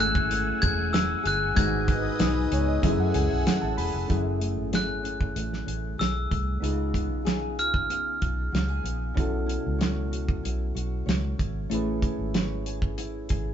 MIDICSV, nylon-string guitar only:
0, 0, Header, 1, 2, 480
1, 0, Start_track
1, 0, Tempo, 633580
1, 1190, Time_signature, 4, 2, 24, 8
1, 10257, End_track
2, 0, Start_track
2, 0, Title_t, "Nylon-string guitar"
2, 0, Program_c, 0, 24
2, 0, Note_on_c, 0, 42, 94
2, 0, Note_on_c, 0, 57, 66
2, 0, Note_on_c, 0, 64, 65
2, 225, Note_off_c, 0, 64, 0
2, 228, Note_on_c, 0, 64, 63
2, 468, Note_on_c, 0, 68, 73
2, 701, Note_off_c, 0, 64, 0
2, 704, Note_on_c, 0, 64, 68
2, 932, Note_off_c, 0, 68, 0
2, 935, Note_on_c, 0, 68, 73
2, 1174, Note_off_c, 0, 42, 0
2, 1177, Note_on_c, 0, 44, 89
2, 1232, Note_off_c, 0, 57, 0
2, 1416, Note_on_c, 0, 59, 60
2, 1655, Note_off_c, 0, 64, 0
2, 1658, Note_on_c, 0, 63, 60
2, 1892, Note_off_c, 0, 59, 0
2, 1901, Note_on_c, 0, 59, 55
2, 2135, Note_off_c, 0, 44, 0
2, 2138, Note_on_c, 0, 42, 80
2, 2161, Note_off_c, 0, 68, 0
2, 2191, Note_off_c, 0, 63, 0
2, 2192, Note_off_c, 0, 59, 0
2, 2382, Note_on_c, 0, 68, 73
2, 2627, Note_on_c, 0, 61, 60
2, 2861, Note_off_c, 0, 68, 0
2, 2864, Note_on_c, 0, 68, 74
2, 3092, Note_off_c, 0, 42, 0
2, 3102, Note_on_c, 0, 42, 74
2, 3334, Note_on_c, 0, 57, 50
2, 3357, Note_off_c, 0, 68, 0
2, 3580, Note_on_c, 0, 68, 61
2, 3807, Note_off_c, 0, 61, 0
2, 3810, Note_on_c, 0, 61, 51
2, 4047, Note_off_c, 0, 57, 0
2, 4056, Note_on_c, 0, 57, 47
2, 4286, Note_off_c, 0, 61, 0
2, 4290, Note_on_c, 0, 61, 53
2, 4529, Note_off_c, 0, 68, 0
2, 4532, Note_on_c, 0, 68, 60
2, 4766, Note_off_c, 0, 57, 0
2, 4775, Note_on_c, 0, 57, 57
2, 5017, Note_on_c, 0, 49, 77
2, 5025, Note_off_c, 0, 42, 0
2, 5070, Note_off_c, 0, 57, 0
2, 5256, Note_on_c, 0, 59, 54
2, 5278, Note_off_c, 0, 61, 0
2, 5488, Note_off_c, 0, 68, 0
2, 5491, Note_on_c, 0, 68, 62
2, 5741, Note_on_c, 0, 65, 50
2, 5976, Note_off_c, 0, 59, 0
2, 5979, Note_on_c, 0, 59, 53
2, 6211, Note_off_c, 0, 65, 0
2, 6220, Note_on_c, 0, 65, 61
2, 6452, Note_off_c, 0, 68, 0
2, 6455, Note_on_c, 0, 66, 61
2, 6579, Note_off_c, 0, 66, 0
2, 6579, Note_on_c, 0, 68, 57
2, 6689, Note_off_c, 0, 59, 0
2, 6692, Note_on_c, 0, 59, 56
2, 6927, Note_on_c, 0, 47, 69
2, 6947, Note_off_c, 0, 49, 0
2, 6994, Note_off_c, 0, 68, 0
2, 6995, Note_off_c, 0, 65, 0
2, 7166, Note_off_c, 0, 59, 0
2, 7169, Note_on_c, 0, 64, 55
2, 7413, Note_on_c, 0, 73, 64
2, 7662, Note_on_c, 0, 66, 53
2, 7902, Note_off_c, 0, 64, 0
2, 7905, Note_on_c, 0, 64, 53
2, 8133, Note_off_c, 0, 66, 0
2, 8142, Note_on_c, 0, 66, 56
2, 8374, Note_off_c, 0, 73, 0
2, 8377, Note_on_c, 0, 73, 61
2, 8619, Note_off_c, 0, 64, 0
2, 8622, Note_on_c, 0, 64, 55
2, 8861, Note_on_c, 0, 57, 78
2, 8864, Note_off_c, 0, 47, 0
2, 8918, Note_off_c, 0, 66, 0
2, 9108, Note_off_c, 0, 64, 0
2, 9111, Note_on_c, 0, 64, 54
2, 9349, Note_off_c, 0, 73, 0
2, 9352, Note_on_c, 0, 73, 57
2, 9597, Note_on_c, 0, 68, 53
2, 9831, Note_off_c, 0, 64, 0
2, 9834, Note_on_c, 0, 64, 53
2, 10068, Note_off_c, 0, 68, 0
2, 10071, Note_on_c, 0, 68, 55
2, 10257, Note_off_c, 0, 57, 0
2, 10257, Note_off_c, 0, 64, 0
2, 10257, Note_off_c, 0, 68, 0
2, 10257, Note_off_c, 0, 73, 0
2, 10257, End_track
0, 0, End_of_file